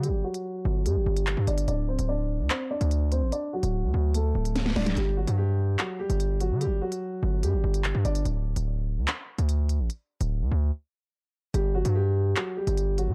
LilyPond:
<<
  \new Staff \with { instrumentName = "Grand piano" } { \time 4/4 \key d \phrygian \tempo 4 = 146 <g g'>8 <fis fis'>4. <g g'>4. <d' d''>8 | <d' d''>8 <c' c''>8 <d' d''>4 <c' c''>8 <d' d''>4 <c' c''>8 | <d' d''>8 <fis fis'>4. <a a'>4. <d' d''>8 | <g g'>8 <fis fis'>8 <g g'>4 <fis fis'>8 <g g'>4 <fis fis'>8 |
<g g'>8 <fis fis'>4. <g g'>4. <d' d''>8 | r1 | r1 | <g g'>8 <fis fis'>8 <g g'>4 <fis fis'>8 <g g'>4 <fis fis'>8 | }
  \new Staff \with { instrumentName = "808-style bass" } { \clef bass \time 4/4 \key d \phrygian d32 g,,16. r4 g,,8 g,16 g,,16 g,,8. g,16 g,,8 | d,,8. d,,4 d,16 r8. d,4 a,,16 | r8. d,,8 d,16 d,4 d,,4 d,,8 | g,,8. g,4~ g,16 r8. g,,4 d16~ |
d32 g,,16. r4 g,,8 g,16 g,,16 g,,8. g,16 g,,8 | d,,8. d,,4 d,16 r8. d,4 a,,16 | r8. d,,8 d,16 d,8 r2 | g,,8. g,4~ g,16 r8. g,,4 d16 | }
  \new DrumStaff \with { instrumentName = "Drums" } \drummode { \time 4/4 hh8. hh16 r4 hh8. hh16 <hc hh>8 hh16 hh16 | hh8. hh16 r4 <hc hh>8. hh16 hh8 hh8 | hh8. hh16 r4 hh8. hh16 <hh sn>16 sn16 <hho sn>16 <hh sn>16 | hh8. hh16 r4 <hc hh>8. hh16 hh8 hh8 |
hh8. hh16 r4 hh8. hh16 <hc hh>8 hh16 hh16 | hh8. hh16 r4 <hc hh>8. hh16 hh8 hh8 | hh8. hh16 r4 r4 r4 | hh8. hh16 r4 <hc hh>8. hh16 hh8 hh8 | }
>>